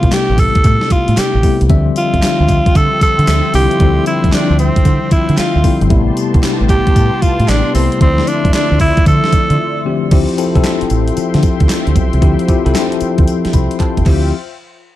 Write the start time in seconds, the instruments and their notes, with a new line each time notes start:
Already playing: tine electric piano C3 G3 A3 B3 E4 G4, tenor saxophone F4
0.03 fingered electric bass C2, kick, closed hi-hat
0.12 tenor saxophone G4, muted fingered electric bass stroke, snare, clap, closed hi-hat, tambourine
0.30 fingered electric bass A1
0.38 tenor saxophone A4, kick, open hi-hat, tambourine
0.55 kick, closed hi-hat
0.64 fingered electric bass A2, kick, closed hi-hat, tambourine
0.81 snare
0.90 tenor saxophone F4, muted fingered electric bass stroke, kick, closed hi-hat, tambourine
1.08 fingered electric bass A2, closed hi-hat
1.17 tenor saxophone G4, muted fingered electric bass stroke, snare, clap, closed hi-hat, tambourine
1.35 fingered electric bass A1
1.43 tine electric piano C3 G3 A3 B3 E4, kick, open hi-hat, tambourine
1.61 fingered electric bass C2, closed hi-hat
1.69 fingered electric bass D2, tine electric piano D3 E3 G3 C4 E5, analog synth pad F3 E5 G5 C6, kick, closed hi-hat
1.76 tine electric piano F3
1.96 tenor saxophone F4, closed hi-hat, tambourine
2.14 fingered electric bass F2, kick, closed hi-hat
2.22 muted fingered electric bass stroke, snare, clap, closed hi-hat, tambourine
2.40 fingered electric bass D2
2.48 kick, clap, closed hi-hat, tambourine
2.66 kick, closed hi-hat
2.75 fingered electric bass D3, tenor saxophone A4, kick, closed hi-hat, tambourine
3.01 tenor saxophone A4, muted fingered electric bass stroke, kick, closed hi-hat, tambourine
3.19 fingered electric bass D3, closed hi-hat
3.27 fingered electric bass D2, snare, clap, closed hi-hat, tambourine
3.53 fingered electric bass C2, tine electric piano D3 F3 G3 C4 E4, tenor saxophone G4, open hi-hat, tambourine
3.71 closed hi-hat
3.79 fingered electric bass D2, tine electric piano D3 F3 G3 C4 E4, kick, closed hi-hat
4.06 tenor saxophone E4, closed hi-hat, tambourine
4.24 fingered electric bass F2, kick, closed hi-hat
4.32 tenor saxophone D4, muted fingered electric bass stroke, snare, clap, closed hi-hat, tambourine
4.50 fingered electric bass D2
4.59 tenor saxophone C4, closed hi-hat, tambourine
4.76 kick, closed hi-hat
4.85 fingered electric bass D3, kick, closed hi-hat, tambourine
5.11 tenor saxophone E4, muted fingered electric bass stroke, kick, closed hi-hat, tambourine
5.29 fingered electric bass D3, closed hi-hat
5.37 tenor saxophone F4, muted fingered electric bass stroke, snare, clap, closed hi-hat, tambourine
5.56 fingered electric bass D2
5.64 tine electric piano D3 F3 G3 C4 E4, kick, open hi-hat, tambourine
5.81 fingered electric bass G1, closed hi-hat
5.90 fingered electric bass A1, tine electric piano C3 G3 A3 B3 E4, analog synth pad B3 G4 A5 C6, kick, closed hi-hat
6.17 closed hi-hat, tambourine
6.34 fingered electric bass C2, kick, closed hi-hat
6.43 snare, clap, closed hi-hat, tambourine
6.61 fingered electric bass A1
6.69 tenor saxophone G4, kick, clap, closed hi-hat, tambourine
6.87 kick, closed hi-hat
6.96 fingered electric bass A2, kick, closed hi-hat, tambourine
7.22 tenor saxophone F4, muted fingered electric bass stroke, kick, closed hi-hat, tambourine
7.40 fingered electric bass A2, closed hi-hat
7.48 fingered electric bass A1, tenor saxophone D4, snare, clap, closed hi-hat, tambourine
7.74 fingered electric bass C2, tine electric piano C3 G3 A3 B3 E4, tenor saxophone C4, open hi-hat, tambourine
7.92 closed hi-hat
8.00 fingered electric bass D2, tine electric piano D3 F3 A3 C4 E4, analog synth pad F3 D5 E5, tenor saxophone C4, kick, closed hi-hat
8.18 snare
8.27 tenor saxophone D4, closed hi-hat, tambourine
8.45 fingered electric bass F2, kick, closed hi-hat
8.53 tenor saxophone D4, muted fingered electric bass stroke, snare, clap, closed hi-hat, tambourine
8.72 fingered electric bass D2
8.80 tenor saxophone E4, kick, clap, open hi-hat, tambourine
8.97 kick, closed hi-hat
9.06 fingered electric bass D3, tenor saxophone A4, kick, closed hi-hat, tambourine
9.24 snare
9.32 muted fingered electric bass stroke, kick, closed hi-hat, tambourine
9.50 fingered electric bass D3, closed hi-hat
9.85 tine electric piano D3 F3 A3 C4 G4
10.11 fingered electric bass D2, tine electric piano F3 C4 E4 G4, analog synth pad F3 E5 G5 C6, kick, closed hi-hat, crash
10.29 closed hi-hat
10.38 tine electric piano F3 C4 E4 A4, closed hi-hat, tambourine
10.55 fingered electric bass C2, tine electric piano F3 C4 E4 A4, kick, closed hi-hat
10.64 snare, clap, closed hi-hat, tambourine
10.81 muted fingered electric bass stroke, closed hi-hat
10.90 fingered electric bass A1, closed hi-hat, tambourine
11.08 closed hi-hat
11.17 muted fingered electric bass stroke, closed hi-hat, tambourine
11.34 fingered electric bass D3, snare, closed hi-hat
11.43 kick, closed hi-hat, tambourine
11.60 fingered electric bass D2, kick, closed hi-hat
11.69 snare, clap, closed hi-hat, tambourine
11.87 fingered electric bass D2, closed hi-hat
11.96 fingered electric bass B1, kick, closed hi-hat, tambourine
12.13 fingered electric bass C2, closed hi-hat
12.22 fingered electric bass D2, tine electric piano F3 C4 E4 G4, kick, closed hi-hat
12.39 closed hi-hat
12.48 tine electric piano F3 C4 E4 G4, kick, closed hi-hat, tambourine
12.65 fingered electric bass C2, tine electric piano F3 C4 E4 A4, closed hi-hat
12.75 snare, clap, closed hi-hat, tambourine
12.92 closed hi-hat
13.00 muted fingered electric bass stroke, closed hi-hat, tambourine
13.18 fingered electric bass D2, kick, closed hi-hat
13.27 closed hi-hat, tambourine
13.45 muted fingered electric bass stroke, snare, closed hi-hat
13.53 fingered electric bass C2, tine electric piano B5, kick, closed hi-hat, tambourine
13.71 closed hi-hat
13.80 tine electric piano A5, kick, clap, closed hi-hat
13.97 fingered electric bass G1, kick, closed hi-hat
14.06 fingered electric bass D2, tine electric piano F3 C4 E4 G4, analog synth pad F4 C5 E5 G5, kick, clap, crash